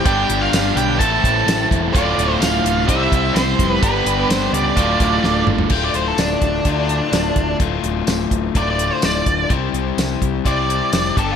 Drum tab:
CC |----------------|----------------|----------------|x---------------|
HH |x-x-x-x-x-x-x-x-|x-x-x-x-x-x-x-x-|x-x-x-x-x-x-----|--x-x-x-x-x-x-x-|
TB |----x-------x---|----x-------x---|----x-----------|----x-------x---|
SD |----o-------o---|----o-------o---|----o-----o-o---|----o-------o---|
T2 |----------------|----------------|--------------o-|----------------|
FT |----------------|----------------|---------------o|----------------|
BD |o-------o-o---o-|o-------o-o---o-|o-------o-o-----|o-----o-o-----o-|

CC |----------------|----------------|
HH |x-x-x-x-x-x-x-x-|x-x-x-x-x-x-x-x-|
TB |----x-------x---|----x-------x---|
SD |----o-------o---|----o-------o---|
T2 |----------------|----------------|
FT |----------------|----------------|
BD |o-----o-o-----o-|o-----o-o-----o-|